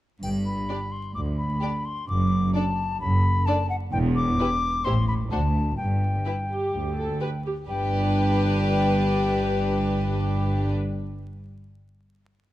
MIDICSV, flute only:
0, 0, Header, 1, 2, 480
1, 0, Start_track
1, 0, Key_signature, 1, "major"
1, 0, Tempo, 462963
1, 238, Time_signature, 4, 2, 24, 8
1, 5517, Tempo, 469116
1, 12891, End_track
2, 0, Start_track
2, 0, Title_t, "Flute"
2, 0, Program_c, 0, 73
2, 241, Note_on_c, 0, 79, 48
2, 303, Note_off_c, 0, 79, 0
2, 476, Note_on_c, 0, 83, 55
2, 951, Note_on_c, 0, 84, 54
2, 967, Note_off_c, 0, 83, 0
2, 1182, Note_off_c, 0, 84, 0
2, 1188, Note_on_c, 0, 86, 64
2, 1251, Note_off_c, 0, 86, 0
2, 1432, Note_on_c, 0, 83, 56
2, 1922, Note_on_c, 0, 84, 67
2, 1938, Note_off_c, 0, 83, 0
2, 2155, Note_off_c, 0, 84, 0
2, 2161, Note_on_c, 0, 86, 73
2, 2633, Note_off_c, 0, 86, 0
2, 2639, Note_on_c, 0, 81, 75
2, 3111, Note_off_c, 0, 81, 0
2, 3123, Note_on_c, 0, 83, 81
2, 3585, Note_on_c, 0, 81, 81
2, 3600, Note_off_c, 0, 83, 0
2, 3828, Note_off_c, 0, 81, 0
2, 3834, Note_on_c, 0, 78, 78
2, 3896, Note_off_c, 0, 78, 0
2, 4065, Note_on_c, 0, 79, 81
2, 4127, Note_off_c, 0, 79, 0
2, 4309, Note_on_c, 0, 86, 97
2, 5023, Note_on_c, 0, 84, 82
2, 5039, Note_off_c, 0, 86, 0
2, 5260, Note_off_c, 0, 84, 0
2, 5267, Note_on_c, 0, 83, 75
2, 5329, Note_off_c, 0, 83, 0
2, 5507, Note_on_c, 0, 81, 72
2, 5971, Note_off_c, 0, 81, 0
2, 5977, Note_on_c, 0, 79, 57
2, 7650, Note_off_c, 0, 79, 0
2, 7936, Note_on_c, 0, 79, 66
2, 11031, Note_off_c, 0, 79, 0
2, 12891, End_track
0, 0, End_of_file